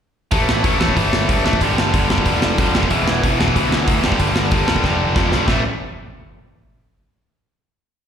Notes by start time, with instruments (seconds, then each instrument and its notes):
0.31 picked electric bass A1, overdriven electric guitar A2 E3 A3, kick, open hi-hat
0.49 snare
0.64 picked electric bass A1, overdriven electric guitar A2 E3 A3, kick, open hi-hat
0.79 picked electric bass A1, overdriven electric guitar A2 E3 A3, snare
0.89 kick
0.96 picked electric bass G1, overdriven electric guitar A2 E3 A3, kick, open hi-hat
1.13 snare
1.28 picked electric bass G2, overdriven electric guitar A2 E3 A3, kick, open hi-hat
1.45 picked electric bass A1, overdriven electric guitar A2 E3 A3, snare
1.53 kick
1.61 picked electric bass G1, overdriven electric guitar G2 D3 G3, kick, open hi-hat
1.78 snare
1.93 picked electric bass G1, overdriven electric guitar G2 D3 G3, kick, open hi-hat
2.09 picked electric bass G1, overdriven electric guitar G2 D3 G3, snare
2.18 kick
2.25 picked electric bass F1, overdriven electric guitar G2 D3 G3, kick, open hi-hat
2.42 snare
2.58 picked electric bass F2, overdriven electric guitar G2 D3 G3, kick, open hi-hat
2.75 picked electric bass F1, overdriven electric guitar G2 D3 G3, snare
2.83 kick
2.89 picked electric bass E1, overdriven electric guitar E2 B2 E3, kick, open hi-hat
3.08 snare
3.23 picked electric bass E1, overdriven electric guitar E2 B2 E3, kick, open hi-hat
3.39 picked electric bass E1, overdriven electric guitar E2 B2 E3, snare
3.48 kick
3.55 picked electric bass D2, overdriven electric guitar E2 B2 E3, kick, open hi-hat
3.72 snare
3.87 picked electric bass D2, overdriven electric guitar E2 B2 E3, kick, open hi-hat
4.04 picked electric bass G1, overdriven electric guitar G2 D3 G3, snare
4.12 kick
4.19 picked electric bass G1, overdriven electric guitar G2 D3 G3, kick, open hi-hat
4.36 snare
4.51 picked electric bass G1, overdriven electric guitar G2 D3 G3, kick, open hi-hat
4.67 picked electric bass G1, overdriven electric guitar G2 D3 G3, snare
4.76 kick
4.84 picked electric bass F1, overdriven electric guitar G2 D3 G3, kick, snare
5.16 picked electric bass F2, overdriven electric guitar G2 D3 G3, kick, snare
5.31 picked electric bass B1, overdriven electric guitar G2 D3 G3, snare
5.48 picked electric bass A1, overdriven electric guitar A2 E3 A3, kick, snare